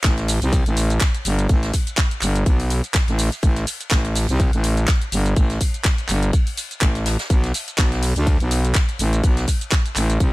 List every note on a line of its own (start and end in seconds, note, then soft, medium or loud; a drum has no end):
0.04 0.40 A1 loud
0.04 kick loud
0.04 snare loud
0.04 clap loud
0.04 closed hi-hat medium
0.04 ride medium
0.04 shaker soft
0.18 snare soft
0.18 closed hi-hat soft
0.18 shaker soft
0.28 open hi-hat loud
0.28 open hi-hat medium
0.28 shaker medium
0.41 0.64 C2 loud
0.41 closed hi-hat medium
0.41 ride soft
0.41 shaker soft
0.53 kick loud
0.53 closed hi-hat medium
0.53 ride medium
0.53 shaker soft
0.66 0.99 A1 loud
0.66 closed hi-hat soft
0.66 shaker soft
0.76 open hi-hat loud
0.76 ride medium
0.76 shaker medium
0.90 closed hi-hat medium
0.90 shaker soft
1.00 kick loud
1.00 snare loud
1.00 clap loud
1.00 closed hi-hat medium
1.00 ride medium
1.00 shaker soft
1.14 closed hi-hat soft
1.14 shaker soft
1.25 1.48 G1 loud
1.25 open hi-hat loud
1.25 ride medium
1.25 shaker medium
1.39 closed hi-hat medium
1.39 shaker soft
1.49 1.72 A1 loud
1.49 kick loud
1.49 closed hi-hat medium
1.49 ride medium
1.49 shaker soft
1.63 snare medium
1.63 closed hi-hat soft
1.63 shaker soft
1.74 kick medium
1.74 open hi-hat loud
1.74 ride medium
1.74 shaker medium
1.87 closed hi-hat medium
1.87 shaker soft
1.97 kick loud
1.97 snare loud
1.97 clap loud
1.97 closed hi-hat medium
1.97 ride medium
1.97 shaker soft
2.11 closed hi-hat soft
2.11 shaker soft
2.21 2.44 G1 loud
2.21 clap medium
2.21 open hi-hat loud
2.21 ride medium
2.21 shaker medium
2.35 closed hi-hat medium
2.35 shaker soft
2.46 2.82 B1 medium
2.46 kick loud
2.46 closed hi-hat medium
2.46 ride medium
2.46 shaker soft
2.60 open hi-hat medium
2.60 shaker soft
2.70 open hi-hat loud
2.70 ride medium
2.70 shaker medium
2.84 closed hi-hat medium
2.84 shaker soft
2.94 kick loud
2.94 snare loud
2.94 clap loud
2.94 closed hi-hat medium
2.94 ride medium
2.94 shaker soft
3.08 3.30 A1 loud
3.08 snare soft
3.08 closed hi-hat soft
3.08 shaker soft
3.19 open hi-hat loud
3.19 open hi-hat medium
3.19 shaker medium
3.32 closed hi-hat medium
3.32 ride soft
3.32 shaker soft
3.42 3.65 A1 loud
3.42 kick loud
3.42 closed hi-hat medium
3.42 ride medium
3.42 shaker soft
3.56 snare soft
3.56 closed hi-hat soft
3.56 shaker soft
3.67 open hi-hat loud
3.67 ride medium
3.67 shaker medium
3.81 closed hi-hat medium
3.81 shaker soft
3.91 4.27 A1 loud
3.91 kick loud
3.91 snare loud
3.91 clap loud
3.91 closed hi-hat medium
3.91 ride medium
3.91 shaker soft
4.04 snare soft
4.04 closed hi-hat soft
4.04 shaker soft
4.15 open hi-hat loud
4.15 open hi-hat medium
4.15 shaker medium
4.29 4.51 C2 loud
4.29 closed hi-hat medium
4.29 ride soft
4.29 shaker soft
4.39 kick loud
4.39 closed hi-hat medium
4.39 ride medium
4.39 shaker soft
4.53 4.86 A1 loud
4.53 closed hi-hat soft
4.53 shaker soft
4.64 open hi-hat loud
4.64 ride medium
4.64 shaker medium
4.77 closed hi-hat medium
4.77 shaker soft
4.88 kick loud
4.88 snare loud
4.88 clap loud
4.88 closed hi-hat medium
4.88 ride medium
4.88 shaker soft
5.02 closed hi-hat soft
5.02 shaker soft
5.12 5.35 G1 loud
5.12 open hi-hat loud
5.12 ride medium
5.12 shaker medium
5.26 closed hi-hat medium
5.26 shaker soft
5.36 5.59 A1 medium
5.36 kick loud
5.36 closed hi-hat medium
5.36 ride medium
5.36 shaker soft
5.50 snare soft
5.50 closed hi-hat soft
5.50 shaker soft
5.61 kick medium
5.61 open hi-hat loud
5.61 ride medium
5.61 shaker medium
5.74 closed hi-hat medium
5.74 shaker soft
5.84 kick loud
5.84 snare loud
5.84 clap loud
5.84 closed hi-hat medium
5.84 ride medium
5.84 shaker soft
5.98 closed hi-hat soft
5.98 shaker soft
6.09 6.32 G1 loud
6.09 clap medium
6.09 open hi-hat loud
6.09 ride medium
6.09 shaker medium
6.23 closed hi-hat medium
6.23 shaker soft
6.33 kick loud
6.33 closed hi-hat medium
6.33 ride medium
6.33 shaker soft
6.47 open hi-hat medium
6.47 shaker soft
6.57 open hi-hat loud
6.57 ride medium
6.57 shaker medium
6.71 closed hi-hat soft
6.71 shaker soft
6.81 7.17 A1 loud
6.81 kick loud
6.81 clap loud
6.81 closed hi-hat medium
6.81 shaker soft
6.95 snare soft
6.95 closed hi-hat soft
6.95 shaker soft
7.06 snare loud
7.06 open hi-hat loud
7.06 ride medium
7.06 shaker medium
7.19 snare loud
7.19 closed hi-hat medium
7.19 ride medium
7.19 shaker soft
7.30 7.53 B1 loud
7.30 kick loud
7.30 closed hi-hat medium
7.30 ride medium
7.30 shaker soft
7.44 snare soft
7.44 closed hi-hat soft
7.44 shaker soft
7.54 open hi-hat loud
7.54 ride medium
7.54 shaker medium
7.68 closed hi-hat medium
7.68 shaker soft
7.78 8.14 B1 loud
7.78 kick loud
7.78 snare loud
7.78 clap loud
7.78 closed hi-hat medium
7.78 ride medium
7.78 shaker soft
7.92 snare soft
7.92 closed hi-hat soft
7.92 shaker soft
8.03 open hi-hat loud
8.03 open hi-hat medium
8.03 shaker medium
8.16 8.38 D2 medium
8.16 closed hi-hat soft
8.16 ride soft
8.16 shaker soft
8.27 kick loud
8.27 closed hi-hat medium
8.27 ride medium
8.27 shaker soft
8.40 8.74 B1 loud
8.40 closed hi-hat soft
8.40 shaker soft
8.51 open hi-hat loud
8.51 ride medium
8.51 shaker medium
8.65 closed hi-hat soft
8.65 shaker soft
8.75 kick loud
8.75 snare loud
8.75 clap loud
8.75 closed hi-hat medium
8.75 ride medium
8.75 shaker soft
8.89 closed hi-hat soft
8.89 shaker soft
8.99 9.22 A1 loud
8.99 open hi-hat loud
8.99 ride medium
8.99 shaker medium
9.13 closed hi-hat soft
9.13 shaker soft
9.23 9.46 B1 medium
9.23 kick loud
9.23 closed hi-hat medium
9.23 ride medium
9.23 shaker soft
9.37 snare soft
9.37 closed hi-hat soft
9.37 shaker soft
9.48 kick medium
9.48 open hi-hat loud
9.48 ride medium
9.48 shaker medium
9.61 closed hi-hat medium
9.61 shaker soft
9.72 kick loud
9.72 snare loud
9.72 clap loud
9.72 closed hi-hat medium
9.72 ride medium
9.72 shaker soft
9.86 closed hi-hat soft
9.86 shaker soft
9.96 10.19 A1 loud
9.96 clap medium
9.96 open hi-hat loud
9.96 ride medium
9.96 shaker medium
10.10 closed hi-hat medium
10.10 shaker soft
10.20 10.33 C2 loud
10.20 kick loud
10.20 closed hi-hat medium
10.20 ride medium
10.20 shaker soft